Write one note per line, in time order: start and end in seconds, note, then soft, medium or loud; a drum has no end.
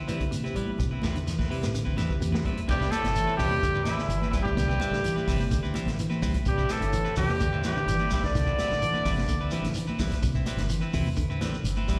0.08 0.15 E3 medium
0.08 0.23 G3 medium
0.08 0.23 C4 medium
0.08 0.24 C4 medium
0.08 0.23 E4 medium
0.08 0.24 E4 medium
0.08 0.24 G4 medium
0.08 0.23 B4 medium
0.08 0.24 B4 medium
0.08 closed hi-hat soft
0.08 high conga medium
0.08 shekere medium
0.20 0.27 D3 medium
0.20 kick medium
0.20 closed hi-hat soft
0.20 shekere soft
0.31 0.46 C3 medium
0.31 closed hi-hat medium
0.31 high conga medium
0.31 shekere medium
0.44 0.84 C4 medium
0.44 0.56 C4 soft
0.44 0.84 E4 medium
0.44 0.55 E4 soft
0.44 0.83 G4 medium
0.44 0.55 B4 medium
0.44 0.84 B4 medium
0.44 high conga medium
0.44 shekere soft
0.54 0.67 A1 medium
0.54 0.70 G3 medium
0.54 0.70 E4 medium
0.54 0.71 B4 medium
0.54 closed hi-hat soft
0.54 low conga medium
0.66 high conga medium
0.78 0.91 A1 loud
0.78 0.93 C3 medium
0.78 kick medium
0.78 closed hi-hat medium
0.78 low conga medium
0.78 shekere medium
0.91 0.97 A1 soft
0.91 1.02 C4 soft
0.91 1.02 E4 soft
0.91 1.03 B4 soft
1.02 1.36 E2 medium
1.02 1.18 G3 medium
1.02 1.18 C4 medium
1.02 1.18 E4 medium
1.02 1.18 B4 medium
1.02 kick medium
1.02 snare medium
1.02 closed hi-hat soft
1.02 high conga medium
1.02 shekere medium
1.15 1.22 D3 medium
1.15 closed hi-hat soft
1.15 shekere soft
1.27 1.41 E3 medium
1.27 snare soft
1.27 closed hi-hat medium
1.27 shekere medium
1.39 1.50 A1 medium
1.39 1.49 C4 soft
1.39 1.49 E4 soft
1.39 1.50 B4 medium
1.39 kick medium
1.39 snare soft
1.39 high conga medium
1.50 1.65 A1 soft
1.50 1.65 C3 medium
1.50 1.64 G3 medium
1.50 1.65 C4 medium
1.50 1.75 C4 medium
1.50 1.65 E4 medium
1.50 1.75 E4 medium
1.50 1.75 G4 medium
1.50 1.75 B4 medium
1.50 1.65 B4 medium
1.50 open hi-hat medium
1.50 shekere soft
1.63 1.85 A2 medium
1.63 snare medium
1.63 closed hi-hat soft
1.63 shekere medium
1.73 1.89 D3 medium
1.73 closed hi-hat medium
1.73 high conga medium
1.73 shekere medium
1.85 1.96 C4 soft
1.85 1.97 E4 soft
1.85 1.97 B4 medium
1.85 kick medium
1.85 low conga medium
1.97 2.09 E2 medium
1.97 2.06 E3 medium
1.97 2.12 G3 medium
1.97 2.12 C4 medium
1.97 2.12 E4 medium
1.97 2.12 B4 medium
1.97 snare soft
1.97 closed hi-hat soft
1.97 high conga medium
1.97 shekere medium
2.09 2.17 D3 medium
2.09 2.14 G4 medium
2.09 2.15 B4 medium
2.09 kick medium
2.09 shekere soft
2.20 2.32 E2 medium
2.20 2.36 E3 medium
2.20 2.41 C4 medium
2.20 2.42 E4 medium
2.20 2.41 G4 medium
2.20 2.41 B4 medium
2.20 closed hi-hat medium
2.20 high conga medium
2.20 shekere medium
2.32 2.55 E2 medium
2.32 2.44 C4 soft
2.32 2.44 E4 soft
2.32 2.44 B4 medium
2.32 snare medium
2.32 high conga medium
2.32 shekere soft
2.44 2.59 G3 medium
2.44 2.59 C4 medium
2.44 2.60 E4 medium
2.44 2.60 B4 medium
2.44 kick medium
2.44 closed hi-hat soft
2.44 low conga medium
2.56 2.62 A1 soft
2.56 closed hi-hat soft
2.56 high conga medium
2.68 2.91 A1 loud
2.68 2.91 G2 medium
2.68 2.82 C3 medium
2.68 2.80 G3 medium
2.68 2.93 G3 medium
2.68 2.80 C4 medium
2.68 2.80 E4 medium
2.68 2.93 G4 loud
2.68 2.79 B4 medium
2.68 kick medium
2.68 crash medium
2.68 shekere medium
2.80 2.91 C4 soft
2.80 2.91 E4 soft
2.80 2.92 B4 medium
2.80 kick medium
2.80 snare soft
2.80 shekere soft
2.91 3.40 A2 medium
2.91 3.06 G3 medium
2.91 3.37 A3 loud
2.91 3.07 C4 medium
2.91 3.07 E4 medium
2.91 3.37 A4 loud
2.91 3.07 B4 medium
2.91 closed hi-hat medium
2.91 high conga loud
2.91 shekere medium
3.03 3.26 G1 medium
3.03 3.11 B2 medium
3.03 snare soft
3.03 closed hi-hat medium
3.03 shekere soft
3.15 3.30 E3 medium
3.15 closed hi-hat medium
3.15 shekere medium
3.27 3.38 C4 soft
3.27 3.38 E4 soft
3.27 3.38 B4 medium
3.27 shekere soft
3.37 3.75 E2 loud
3.37 3.83 G2 loud
3.37 3.53 C3 medium
3.37 3.82 G3 medium
3.37 3.53 G3 medium
3.37 3.53 C4 medium
3.37 3.54 E4 medium
3.37 3.82 G4 loud
3.37 3.54 B4 medium
3.37 kick medium
3.37 open hi-hat medium
3.37 low conga medium
3.37 shekere medium
3.51 high conga medium
3.51 shekere soft
3.61 3.77 D3 medium
3.61 kick medium
3.61 closed hi-hat medium
3.61 high conga medium
3.61 shekere medium
3.73 3.96 A2 medium
3.73 3.85 C4 soft
3.73 3.86 B4 medium
3.73 shekere soft
3.83 4.28 E2 medium
3.83 4.28 E3 medium
3.83 3.94 E3 medium
3.83 4.01 G3 medium
3.83 4.01 C4 medium
3.83 4.29 E4 medium
3.83 closed hi-hat soft
3.83 high conga loud
3.83 shekere medium
3.87 4.01 E4 medium
3.87 4.01 B4 medium
3.87 snare soft
3.98 4.06 D3 medium
3.98 snare soft
3.98 shekere soft
4.08 4.42 G1 medium
4.08 4.25 E3 medium
4.08 closed hi-hat medium
4.08 shekere medium
4.21 4.34 C4 soft
4.21 4.34 E4 soft
4.21 4.34 B4 medium
4.21 high conga medium
4.21 shekere soft
4.29 4.35 E2 medium
4.29 4.36 E3 medium
4.29 4.36 E4 medium
4.29 low conga medium
4.33 4.48 G3 medium
4.33 4.49 C4 medium
4.33 4.49 E4 medium
4.33 4.49 B4 medium
4.33 kick medium
4.33 closed hi-hat medium
4.33 shekere medium
4.41 5.81 G2 medium
4.41 5.81 G3 medium
4.41 5.82 G4 loud
4.45 4.56 D2 medium
4.45 kick medium
4.45 high conga medium
4.45 shekere soft
4.57 4.79 D2 loud
4.57 4.72 C3 medium
4.57 kick medium
4.57 snare soft
4.57 closed hi-hat medium
4.57 shekere medium
4.68 4.79 C4 soft
4.68 4.79 E4 soft
4.68 4.80 B4 medium
4.68 kick medium
4.68 shekere soft
4.80 4.95 G3 medium
4.80 4.95 C4 medium
4.80 4.95 E4 medium
4.80 4.95 B4 medium
4.80 closed hi-hat medium
4.80 high conga loud
4.80 shekere medium
4.91 5.14 A1 medium
4.91 5.00 D3 medium
4.91 snare soft
4.91 shekere soft
5.04 5.19 E3 medium
5.04 closed hi-hat medium
5.04 shekere medium
5.16 5.26 C4 soft
5.16 5.27 E4 medium
5.16 5.27 B4 medium
5.16 high conga medium
5.16 shekere soft
5.27 5.63 G1 medium
5.27 5.43 C3 medium
5.27 5.42 G3 medium
5.27 5.42 C4 medium
5.27 5.42 E4 medium
5.27 5.42 B4 medium
5.27 kick medium
5.27 open hi-hat medium
5.27 low conga medium
5.27 shekere medium
5.39 high conga medium
5.39 shekere soft
5.51 5.66 D3 medium
5.51 kick medium
5.51 closed hi-hat medium
5.51 high conga medium
5.51 shekere medium
5.61 5.73 D2 medium
5.61 5.74 C4 soft
5.61 5.74 E4 medium
5.61 5.75 B4 medium
5.61 shekere soft
5.74 5.83 E3 medium
5.74 5.89 G3 medium
5.74 5.89 C4 medium
5.74 5.89 E4 medium
5.74 closed hi-hat medium
5.74 high conga medium
5.74 shekere medium
5.86 6.09 A1 medium
5.86 5.95 D3 medium
5.86 snare soft
5.86 closed hi-hat medium
5.86 low conga medium
5.86 shekere soft
5.99 6.14 E3 medium
5.99 closed hi-hat medium
5.99 shekere medium
6.10 6.21 C4 soft
6.10 6.21 E4 medium
6.10 6.21 B4 medium
6.10 high conga medium
6.10 shekere soft
6.22 6.33 D2 loud
6.22 6.37 G3 medium
6.22 6.36 C4 medium
6.22 6.36 E4 medium
6.22 6.37 B4 medium
6.22 kick medium
6.22 open hi-hat medium
6.22 low conga medium
6.22 shekere medium
6.34 kick medium
6.34 closed hi-hat medium
6.34 high conga medium
6.34 shekere soft
6.46 6.68 A1 loud
6.46 6.69 G2 medium
6.46 6.61 C3 medium
6.46 6.74 G3 medium
6.46 6.73 G4 medium
6.46 kick medium
6.46 closed hi-hat medium
6.46 shekere medium
6.57 6.68 C4 soft
6.57 6.68 E4 soft
6.57 6.69 B4 medium
6.57 kick medium
6.57 shekere soft
6.68 7.17 A2 medium
6.68 6.83 G3 medium
6.68 6.83 C4 medium
6.68 6.84 E4 medium
6.68 7.17 A4 medium
6.68 6.84 B4 medium
6.68 snare soft
6.68 closed hi-hat medium
6.68 high conga loud
6.68 shekere medium
6.72 7.17 A3 medium
6.80 7.03 G1 medium
6.80 6.88 D3 medium
6.80 closed hi-hat medium
6.80 shekere soft
6.93 7.07 E3 medium
6.93 closed hi-hat medium
6.93 shekere medium
7.05 7.16 C4 soft
7.05 7.16 E4 soft
7.05 7.16 B4 medium
7.05 shekere soft
7.16 7.52 E2 loud
7.16 7.61 G2 medium
7.16 7.31 C3 medium
7.16 7.31 G3 medium
7.16 7.61 G3 medium
7.16 7.31 C4 medium
7.16 7.31 E4 medium
7.16 7.61 G4 loud
7.16 7.31 B4 medium
7.16 kick medium
7.16 open hi-hat medium
7.16 low conga medium
7.16 shekere medium
7.29 high conga medium
7.29 shekere soft
7.40 7.55 D3 medium
7.40 kick medium
7.40 closed hi-hat medium
7.40 high conga medium
7.40 shekere medium
7.51 7.73 A2 medium
7.51 7.64 C4 soft
7.51 7.64 E4 medium
7.51 7.64 B4 soft
7.51 shekere soft
7.64 8.08 G2 medium
7.64 7.71 E3 medium
7.64 7.78 G3 medium
7.64 8.09 G3 medium
7.64 7.79 C4 medium
7.64 7.79 E4 medium
7.64 8.09 G4 medium
7.64 7.79 B4 medium
7.64 snare soft
7.64 closed hi-hat soft
7.64 high conga loud
7.64 shekere medium
7.76 7.83 D3 medium
7.76 shekere soft
7.86 8.20 G1 medium
7.86 8.02 E3 medium
7.86 closed hi-hat medium
7.86 shekere loud
7.99 8.11 C4 soft
7.99 8.11 E4 soft
7.99 8.11 B4 medium
7.99 high conga medium
7.99 shekere soft
8.10 8.22 G2 medium
8.10 8.25 G3 medium
8.10 8.26 G3 medium
8.10 8.23 G3 medium
8.10 8.26 C4 medium
8.10 8.26 E4 medium
8.10 8.23 G4 medium
8.10 8.26 B4 medium
8.10 kick medium
8.10 snare soft
8.10 closed hi-hat medium
8.10 low conga medium
8.10 shekere medium
8.23 8.34 D2 medium
8.23 9.61 D3 medium
8.23 9.61 D4 medium
8.23 9.61 D5 loud
8.23 kick medium
8.23 snare soft
8.23 high conga medium
8.23 shekere soft
8.35 8.57 D2 loud
8.35 8.49 C3 medium
8.35 kick medium
8.35 snare soft
8.35 closed hi-hat medium
8.35 shekere medium
8.47 8.58 C4 soft
8.47 8.58 E4 soft
8.47 8.58 B4 medium
8.47 kick medium
8.47 shekere soft
8.59 8.72 G3 medium
8.59 8.73 C4 medium
8.59 8.73 E4 medium
8.59 8.73 B4 medium
8.59 snare soft
8.59 closed hi-hat medium
8.59 high conga loud
8.59 shekere medium
8.70 8.92 A1 medium
8.70 8.78 D3 medium
8.70 snare soft
8.70 shekere soft
8.82 8.97 E3 medium
8.82 closed hi-hat medium
8.82 shekere medium
8.94 9.04 C4 medium
8.94 9.04 E4 medium
8.94 9.04 B4 medium
8.94 high conga medium
8.94 shekere soft
9.04 9.41 G1 medium
9.04 9.20 C3 medium
9.04 9.19 G3 medium
9.04 9.19 C4 medium
9.04 9.19 E4 medium
9.04 9.20 B4 medium
9.04 kick medium
9.04 open hi-hat medium
9.04 low conga medium
9.04 shekere medium
9.17 snare soft
9.17 high conga medium
9.17 shekere soft
9.28 9.43 D3 medium
9.28 kick medium
9.28 closed hi-hat medium
9.28 shekere medium
9.40 9.51 D2 medium
9.40 9.51 C4 soft
9.40 9.52 E4 soft
9.40 9.52 B4 medium
9.40 shekere soft
9.51 9.59 E3 medium
9.51 9.66 G3 medium
9.51 9.67 C4 medium
9.51 9.67 E4 medium
9.51 9.67 B4 medium
9.51 closed hi-hat soft
9.51 high conga medium
9.51 shekere medium
9.63 9.86 A1 medium
9.63 9.71 D3 medium
9.63 snare soft
9.63 closed hi-hat soft
9.63 low conga medium
9.63 shekere soft
9.74 9.90 E3 medium
9.74 closed hi-hat medium
9.74 shekere medium
9.87 9.98 C4 medium
9.87 9.99 E4 soft
9.87 9.99 B4 medium
9.87 high conga medium
9.87 shekere soft
9.99 10.10 D2 medium
9.99 10.14 G3 medium
9.99 10.14 C4 medium
9.99 10.14 E4 medium
9.99 10.14 B4 medium
9.99 kick medium
9.99 snare soft
9.99 open hi-hat medium
9.99 low conga medium
9.99 shekere medium
10.11 kick medium
10.11 snare soft
10.11 closed hi-hat medium
10.11 high conga medium
10.11 shekere soft
10.22 10.45 A1 loud
10.22 10.37 C3 medium
10.22 kick medium
10.22 closed hi-hat medium
10.22 shekere medium
10.35 10.46 C4 soft
10.35 10.46 E4 medium
10.35 kick medium
10.35 shekere soft
10.46 10.61 G3 medium
10.46 10.61 C4 medium
10.46 10.61 E4 medium
10.46 10.61 B4 medium
10.46 closed hi-hat medium
10.46 high conga loud
10.46 shekere medium
10.57 10.80 G1 medium
10.57 10.66 D3 medium
10.57 snare soft
10.57 closed hi-hat medium
10.57 shekere soft
10.69 10.84 E3 medium
10.69 closed hi-hat medium
10.69 shekere medium
10.81 10.92 C4 soft
10.81 10.93 E4 medium
10.81 10.93 B4 medium
10.81 shekere soft
10.93 11.29 E2 loud
10.93 11.08 C3 medium
10.93 11.08 C4 medium
10.93 11.08 E4 medium
10.93 11.08 B4 medium
10.93 kick medium
10.93 open hi-hat medium
10.93 low conga medium
10.93 shekere medium
11.06 high conga medium
11.06 shekere soft
11.16 11.31 D3 medium
11.16 kick medium
11.16 closed hi-hat medium
11.16 shekere medium
11.27 11.50 A2 medium
11.27 11.40 C4 soft
11.27 11.41 E4 medium
11.27 11.41 B4 medium
11.27 shekere soft
11.41 11.48 E3 medium
11.41 11.55 G3 medium
11.41 11.56 C4 medium
11.41 11.56 B4 medium
11.41 muted clean electric guitar stroke medium
11.41 snare soft
11.41 closed hi-hat soft
11.41 high conga medium
11.41 shekere medium
11.53 11.60 D3 medium
11.53 shekere soft
11.64 11.97 G1 medium
11.64 closed hi-hat medium
11.64 shekere medium
11.76 11.88 C4 soft
11.76 11.88 E4 medium
11.76 11.88 B4 medium
11.76 high conga medium
11.76 shekere soft
11.88 11.99 G3 medium
11.88 11.99 C4 medium
11.88 11.99 E4 medium
11.88 11.99 B4 medium
11.88 kick medium
11.88 closed hi-hat medium
11.88 low conga medium
11.88 shekere medium